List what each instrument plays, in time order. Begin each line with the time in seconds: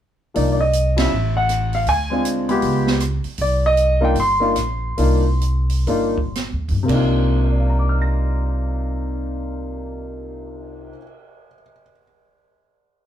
0.34 upright bass C2, grand piano F3 A#3 D4 D#4 D5, open hi-hat
0.52 grand piano D5
0.61 grand piano D#5
0.73 closed hi-hat
0.97 grand piano F3 G3 C#4 E4 E5, snare, ride
1.12 upright bass A1
1.37 grand piano F#5
1.49 cross-stick, closed hi-hat
1.73 grand piano F5, open hi-hat
1.87 upright bass D2, grand piano G#5, open hi-hat
2.10 grand piano G#3 C4 D4 F4
2.25 closed hi-hat
2.49 grand piano G#3 B3 F4 G4, open hi-hat
2.62 upright bass C#2, open hi-hat
2.87 snare
3.00 cross-stick, closed hi-hat
3.24 muted upright bass stroke, open hi-hat
3.38 upright bass C2, grand piano D5, open hi-hat
3.66 grand piano D#5
3.77 closed hi-hat
4.01 grand piano A#3 D4 D#4 F4 G5
4.15 upright bass G1, open hi-hat
4.20 grand piano C6
4.40 grand piano A#3 D4 D#4 F4
4.56 upright bass A#1, cross-stick, closed hi-hat
4.98 upright bass C2, grand piano A#3 D4 D#4 F4, open hi-hat
5.41 closed hi-hat
5.70 open hi-hat
5.87 upright bass G1, grand piano A#3 D4 D#4 F4, open hi-hat
6.18 kick
6.35 cross-stick, snare, closed hi-hat
6.53 upright bass D#2
6.69 upright bass G2, kick, open hi-hat
6.83 grand piano C3 A#3
6.88 upright bass C2, grand piano D4, kick, crash
6.92 grand piano D#4 F4
7.24 cymbal swell
7.44 grand piano A#4
7.52 grand piano D5
7.60 grand piano F5
7.69 grand piano A#5
7.79 grand piano D6
7.89 grand piano F6
8.02 grand piano A#6